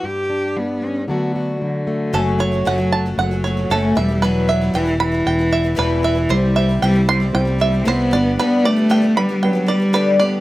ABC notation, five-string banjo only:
X:1
M:4/4
L:1/8
Q:1/4=115
K:F#phr
V:1 name="Five-string banjo"
z8 | A c f a f c A e | B e g b g e B e | =c e g =c' g e c d |
B d g b g d B d |]